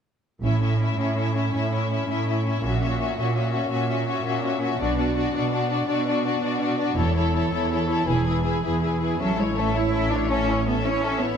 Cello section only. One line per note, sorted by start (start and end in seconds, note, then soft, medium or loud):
0.43 0.92 A2 soft
0.98 1.47 A2 soft
1.54 2.03 A2 soft
2.09 2.57 A2 soft
2.62 3.11 A#2 soft
3.17 3.65 A#2 soft
3.71 4.19 A#2 soft
4.25 4.73 A#2 soft
4.79 5.27 B2 soft
5.33 5.82 B2 soft
5.87 6.36 B2 soft
6.41 6.90 B2 soft
6.97 7.46 E2 medium
7.52 8.01 E2 medium
8.08 8.57 E2 soft
8.64 9.14 E2 soft
9.20 9.37 F#3 medium
9.38 9.57 G#3 soft
9.56 9.75 A3 soft
9.75 10.11 E4 medium
10.11 10.30 D4 medium
10.31 10.67 C#4 medium
10.67 10.74 B3 medium
10.85 11.21 C#4 medium
11.21 11.37 B3 medium